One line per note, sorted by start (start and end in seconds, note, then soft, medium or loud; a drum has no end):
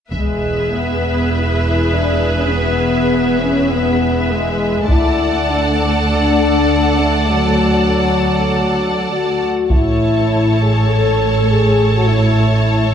0.11 4.85 E1 soft
0.11 4.84 E2 soft
0.11 0.69 G#3 soft
0.11 4.85 G#4 soft
0.11 4.85 B4 soft
0.11 4.85 E5 soft
0.11 taiko soft
0.72 1.32 B3 soft
1.32 1.91 E4 soft
1.92 2.37 D4 soft
2.38 2.52 C#4 soft
2.51 3.39 B3 medium
3.40 3.70 C#4 soft
3.70 4.29 B3 medium
4.31 4.89 G#3 medium
4.88 9.49 D2 soft
4.88 9.50 D2 soft
4.88 5.49 E4 medium
4.88 9.50 A4 soft
4.88 9.46 D5 soft
4.88 9.50 F#5 soft
4.88 9.46 A5 soft
4.88 taiko soft
5.51 5.92 D4 soft
6.09 6.96 D4 medium
6.98 7.28 A3 soft
7.28 9.10 F#3 soft
9.10 9.69 F#4 soft
9.69 12.94 A1 soft
9.69 12.94 A2 soft
9.69 10.60 E4 medium
9.69 12.94 A4 soft
9.69 12.94 C#5 soft
9.69 12.94 A5 soft
9.69 taiko soft
10.61 10.90 G#4 soft
10.91 11.50 A4 medium
11.49 11.82 G#4 medium
11.95 12.09 F#4 medium
12.08 12.94 E4 medium